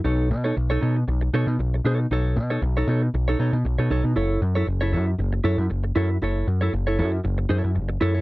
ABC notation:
X:1
M:4/4
L:1/16
Q:1/4=117
K:F#dor
V:1 name="Clean electric guitar"
[DAc]2 z [DAc] z [DAc] [DAc] z3 [DAc]2 z2 [DAc]2 | [DAc]2 z [DAc] z [DAc] [DAc] z2 [DAc] [DAc] z2 [DAc] [DAc]2 | [EAc]2 z [EAc] z [EAc] [EAc] z3 [EAc]2 z2 [EAc]2 | [EAc]2 z [EAc] z [EAc] [EAc] z3 [EAc]2 z2 [EAc] [EAc] |]
V:2 name="Picked electric bass" clef=bass
B,,,2 B,,2 B,,,2 B,,2 B,,,2 B,, B,, B,,,2 B,,2 | B,,,2 B,,2 B,,,2 B,,2 B,,,2 B,, B,, B,,, B,, B,,, B,, | F,,,2 F,,2 F,,,2 F,,2 F,,,2 F,, F,, F,,,2 F,,2 | F,,,2 F,,2 F,,,2 F,,2 F,,,2 F,, F,, F,,,2 F,,2 |]